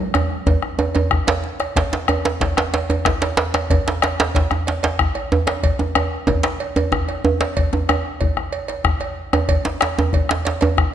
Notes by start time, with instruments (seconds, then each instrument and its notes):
Already playing: talking drum F#3
0.14 bombo rim, cowbell, djembe slap, djembe tone
0.31 djembe slap
0.46 bombo rim, bombo low, cowbell, djembe tone, djembe bass
0.62 bombo rim, djembe tone
0.79 cowbell, djembe tone
0.95 bombo rim, cowbell, djembe slap, djembe tone
1.11 bombo rim, bombo low, djembe bass
1.27 cowbell, djembe slap, djembe bass
1.44 djembe slap
1.60 bombo rim, cowbell, djembe slap
1.76 bombo low, cowbell, djembe slap, djembe bass
1.92 bombo rim, djembe slap, djembe tone
2.08 bombo rim, cowbell, djembe tone
2.25 djembe slap
2.41 bombo low, cowbell, djembe slap, djembe bass
2.57 bombo rim, djembe slap, djembe tone
2.74 cowbell, djembe slap
2.90 cowbell, djembe slap, djembe tone
3.05 bombo rim, bombo low, djembe slap, djembe bass
3.22 cowbell, djembe slap, djembe tone
3.37 djembe slap
3.54 bombo rim, cowbell, djembe slap
3.70 bombo low, cowbell, djembe slap, djembe tone, djembe bass
3.87 bombo rim, djembe slap, djembe tone
4.02 bombo rim, cowbell, djembe slap
4.20 djembe slap
4.34 bombo low, cowbell, djembe slap, djembe bass
4.51 bombo rim, djembe tone
4.67 cowbell, djembe slap
4.83 cowbell, djembe slap
4.99 bombo rim, bombo low, djembe bass
5.15 cowbell, djembe tone
5.32 djembe tone
5.47 bombo rim, cowbell, djembe slap
5.63 bombo low, cowbell, djembe slap, djembe bass
5.79 bombo rim, djembe slap, djembe tone
5.95 bombo rim, cowbell, djembe slap, djembe tone
6.27 bombo low, cowbell, djembe tone, djembe bass
6.43 bombo rim, djembe slap, djembe tone
6.60 cowbell, djembe slap
6.76 cowbell, djembe slap, djembe tone
6.92 bombo rim, bombo low, djembe tone, djembe bass
7.09 cowbell, djembe tone
7.25 djembe tone
7.41 bombo rim, cowbell, djembe slap
7.57 bombo low, cowbell, djembe slap, djembe bass
7.73 bombo rim, djembe slap, djembe tone
7.89 bombo rim, cowbell, djembe tone
8.21 bombo low, cowbell, djembe bass
8.37 bombo rim, djembe slap, djembe tone
8.53 cowbell
8.68 cowbell, djembe slap
8.84 bombo rim, bombo low, djembe bass
9.00 cowbell, djembe tone
9.16 djembe slap
9.33 bombo rim, cowbell, djembe tone
9.49 bombo low, cowbell, djembe slap, djembe bass
9.65 bombo rim, djembe slap, djembe tone
9.81 bombo rim, cowbell, djembe slap
9.99 djembe tone
10.13 bombo low, cowbell, djembe bass
10.29 bombo rim, djembe slap, djembe tone
10.45 cowbell, djembe slap
10.61 cowbell, djembe slap, djembe tone
10.77 bombo rim, bombo low, djembe bass